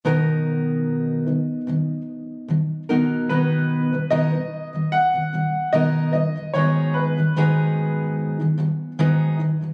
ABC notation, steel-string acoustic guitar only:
X:1
M:4/4
L:1/16
Q:"Swing 16ths" 1/4=74
K:B
V:1 name="Steel-string acoustic guitar" clef=bass
[B,,D,F,B,DA]6 [B,,D,F,]2 [B,,D,F,]2 z2 [B,,D,F,]2 [B,,D,F,B,DA]2 | [B,,D,F,B,D]3 [B,,D,F,] [B,,D,F,B,DA] [B,,D,F,]2 [B,,D,F,]2 [B,,D,F,] [B,,D,F,]2 [B,,D,F,B,DA]2 [G,,D,F,] [G,,D,F,] | [G,,D,F,B,DG]3 [G,,D,F,] [G,,D,F,B,DG]4- [G,,D,F,B,DG] [G,,D,F,] [G,,D,F,]2 [G,,D,F,B,DG]2 [G,,D,F,] [G,,D,F,] |]